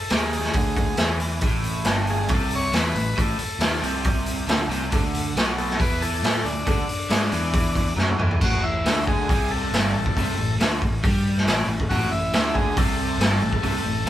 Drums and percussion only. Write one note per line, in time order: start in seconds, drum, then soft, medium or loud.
0.10 snare loud
0.10 open hi-hat medium
0.33 open hi-hat medium
0.43 snare soft
0.53 kick loud
0.53 open hi-hat medium
0.76 kick medium
0.76 open hi-hat medium
0.97 snare loud
0.97 open hi-hat medium
1.20 open hi-hat medium
1.41 kick loud
1.41 open hi-hat medium
1.64 open hi-hat medium
1.84 snare loud
1.84 open hi-hat medium
2.07 open hi-hat medium
2.28 kick loud
2.28 open hi-hat medium
2.50 open hi-hat medium
2.73 snare loud
2.73 open hi-hat medium
2.96 open hi-hat medium
3.18 kick loud
3.18 open hi-hat medium
3.39 open hi-hat medium
3.60 snare loud
3.60 open hi-hat medium
3.73 snare soft
3.83 open hi-hat medium
4.04 kick loud
4.04 open hi-hat medium
4.26 open hi-hat medium
4.49 snare loud
4.49 open hi-hat medium
4.71 open hi-hat medium
4.92 kick loud
4.92 open hi-hat medium
5.14 open hi-hat medium
5.37 snare loud
5.37 open hi-hat medium
5.58 open hi-hat soft
5.70 snare soft
5.80 kick loud
5.80 open hi-hat medium
6.02 open hi-hat medium
6.24 snare loud
6.24 open hi-hat medium
6.46 open hi-hat medium
6.67 kick loud
6.67 open hi-hat medium
6.89 open hi-hat medium
7.10 snare loud
7.10 open hi-hat medium
7.21 snare soft
7.32 open hi-hat medium
7.53 kick loud
7.53 open hi-hat medium
7.75 kick medium
7.75 open hi-hat medium
7.98 snare medium
8.08 high tom medium
8.19 mid tom medium
8.31 floor tom medium
8.41 kick loud
8.41 crash medium
8.86 snare loud
8.86 open hi-hat medium
9.07 kick medium
9.29 kick loud
9.29 open hi-hat medium
9.73 snare loud
9.73 open hi-hat medium
10.06 kick medium
10.17 kick medium
10.17 open hi-hat medium
10.60 snare loud
10.60 open hi-hat medium
10.82 kick medium
11.04 kick loud
11.04 open hi-hat medium
11.37 snare soft
11.47 snare loud
11.47 open hi-hat medium
11.80 kick medium
11.91 kick medium
11.91 open hi-hat soft
12.33 snare loud
12.33 open hi-hat medium
12.55 kick medium
12.77 kick loud
12.77 open hi-hat medium
13.21 snare loud
13.21 open hi-hat medium
13.53 kick medium
13.63 kick medium
13.63 open hi-hat medium